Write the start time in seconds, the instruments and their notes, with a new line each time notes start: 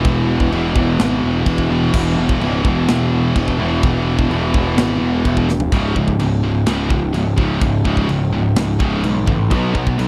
Already playing: distorted electric guitar E2 B2 E3
0.05 picked electric bass E1, kick, china
0.40 kick
0.51 picked electric bass E1, distorted electric guitar E2 B2 E3, china
0.75 picked electric bass E1, distorted electric guitar E2 B2 E3, kick
0.99 picked electric bass G#1, snare, china
1.24 picked electric bass E1
1.46 picked electric bass E1, kick, china
1.58 kick
1.68 distorted electric guitar E2 B2 E3
1.94 picked electric bass E1, kick, china, crash
2.18 picked electric bass E1
2.29 kick
2.40 picked electric bass C#1, distorted electric guitar E2 B2 E3, china
2.63 picked electric bass E1, distorted electric guitar E2 B2 E3, kick
2.88 picked electric bass E1, snare, china
3.36 picked electric bass E1, kick, china
3.48 kick
3.58 picked electric bass E1, distorted electric guitar E2 B2 E3
3.83 picked electric bass E1, kick, china
4.19 kick
4.30 picked electric bass E1, distorted electric guitar E2 B2 E3, china
4.53 picked electric bass E1, distorted electric guitar E2 B2 E3, kick
4.77 picked electric bass G#1, snare, china
5.01 picked electric bass E1
5.25 picked electric bass E1, kick, china
5.37 kick
5.49 snare
5.60 floor tom
5.72 picked electric bass C#1, distorted electric guitar C#2 G#2 C#3, kick, crash
5.96 picked electric bass C#1, distorted electric guitar C#2 G#2, kick
6.08 kick
6.19 picked electric bass C#1, distorted electric guitar C#2 G#2, crash
6.44 distorted electric guitar C#2 G#2
6.66 picked electric bass C#1, distorted electric guitar C#2 G#2 C#3, snare, crash
6.90 distorted electric guitar C#2 G#2, kick
7.14 picked electric bass C#1, distorted electric guitar C#2 G#2, crash
7.38 distorted electric guitar C#2 G#2 C#3, kick
7.61 picked electric bass C#1, distorted electric guitar C#2 G#2, kick, crash
7.85 picked electric bass C#1, distorted electric guitar C#2 G#2 C#3, kick
7.97 kick
8.09 picked electric bass C#1, distorted electric guitar C#2 G#2, crash
8.32 picked electric bass C#1, distorted electric guitar C#2 G#2
8.56 picked electric bass C#1, distorted electric guitar C#2 G#2, snare, crash
8.80 picked electric bass C#1, distorted electric guitar C#2 G#2 C#3, kick
9.04 picked electric bass B1, distorted electric guitar C#2 G#2, crash
9.27 picked electric bass A1, distorted electric guitar C#2 G#2, kick
9.51 picked electric bass B1, distorted electric guitar B2 F#3 B3, kick, crash
9.74 picked electric bass B1, distorted electric guitar B2 F#3 B3, kick
9.87 kick
9.98 picked electric bass B1, distorted electric guitar B2 F#3 B3, crash